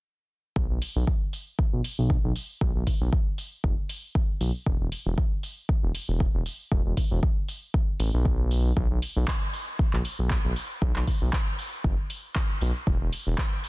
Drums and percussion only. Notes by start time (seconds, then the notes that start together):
0.56 kick
0.82 open hi-hat
1.07 kick
1.33 open hi-hat
1.59 kick
1.84 open hi-hat
2.10 kick
2.36 open hi-hat
2.61 kick
2.87 kick, open hi-hat
3.13 kick
3.38 open hi-hat
3.64 kick
3.89 open hi-hat
4.15 kick
4.41 open hi-hat
4.66 kick
4.92 open hi-hat
5.18 kick
5.43 open hi-hat
5.69 kick
5.95 open hi-hat
6.20 kick
6.46 open hi-hat
6.72 kick
6.97 kick, open hi-hat
7.23 kick
7.48 open hi-hat
7.74 kick
8.00 open hi-hat
8.25 kick
8.51 open hi-hat
8.77 kick
9.02 open hi-hat
9.28 kick, clap
9.54 open hi-hat
9.79 kick
9.93 clap
10.05 open hi-hat
10.31 kick, clap
10.56 open hi-hat
10.82 kick
10.96 clap
11.07 kick, open hi-hat
11.33 kick, clap
11.59 open hi-hat
11.84 kick
12.10 open hi-hat
12.36 kick, clap
12.61 open hi-hat
12.87 kick
13.13 open hi-hat
13.38 kick, clap
13.64 open hi-hat